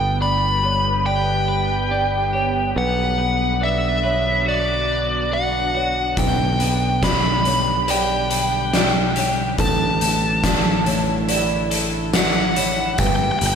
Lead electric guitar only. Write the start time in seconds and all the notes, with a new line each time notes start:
Already playing: G5
0.22 B5
1.06 G5
2.78 F#5
3.64 E5
4.49 D5
5.33 F#5
6.19 G5
7.04 B5
7.90 G5
9.60 A5
12.16 F#5
12.99 G5
13.07 G5
13.16 G5
13.24 G5
13.32 G5
13.39 G5
13.47 G5